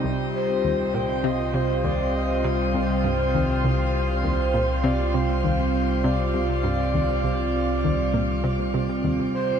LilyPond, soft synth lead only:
\new Staff \with { instrumentName = "Soft synth lead" } { \time 4/4 \key c \minor \tempo 4 = 100 r8 c''4 g''8 ees''8 c''8 d''8 ees''8 | c''2. c''4 | d''8 c''4. d''2~ | d''2. r8 c''8 | }